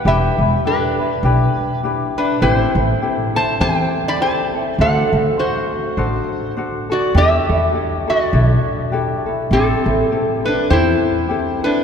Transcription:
0.05 E1 D4 E4 G4 B4 E5
0.39 E1 D4 E4 B4
0.65 D4 E4 G4 B4
1.00 D4 E4 B4
1.23 B1 D4 E4 G4 B4
1.83 D4 E4 G4 B4
2.18 D4 E4 B4
2.42 A1 C4 E4 G4 A4 B4
2.53 C5
2.75 A1 C4 E4 A4
3.02 C4 E4 G4 A4
3.35 C4 E4 A4 C5 A5
3.60 E2 C4 E4 G4 A4 C5 G#5
3.78 G5
4.08 D5 B5
4.20 C4 E4 G4 A4 C5 A5
4.55 C4 E4 A4
4.79 D2 D4 F#4 A4 C5 F#5
5.13 D2 D4 F#4 A4
5.39 D4 F#4 A4 C5
5.97 A1 D4 F#4 A4 C5
6.57 D4 F#4 A4 C5
6.90 D4 F#4 A4 D5
7.15 E2 D4 E4 G4 A4 E5
7.49 E2 D4 E4 A4
7.73 D4 E4 G4 A4
8.07 D4 E4 F#4 A4 D5
8.33 B1 D4 E4 A4
8.92 D4 E4 G4 A4
9.26 D4 E4 A4
9.51 A1 C4 E4 G4 A4
9.86 A1 C4 E4 A4
10.11 C4 E4 G4 A4
10.44 C4 D4 E4 A4 B4
10.70 E2 C4 E4 G4 A4 C5
11.28 C4 E4 G4 A4
11.63 C4 D4 E4 A4 B4

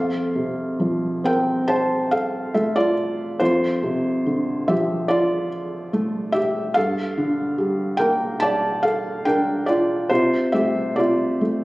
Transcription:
Already playing: F2 A4 F5
0.35 C3
0.80 F3
1.24 C4 A#4 G5
1.68 C5 A5
2.11 A4 F5
2.54 A3 A4 E5
2.76 F4 D5
3.40 F2 F4 C5
3.83 C3
4.26 D3
4.68 F3 G4 E5
5.08 F4 D5
5.93 A3
6.32 G4 E5
6.74 G2 A4 F5
7.18 D3
7.58 G3
7.97 A#3 A#4 G5
8.40 D5 A5
8.83 A4 F5
9.25 D4 A#4 G5
9.66 F4 D5
10.09 C3 F4 C5
10.52 A3 G4 E5
10.96 C3 F4 D5
11.41 A3

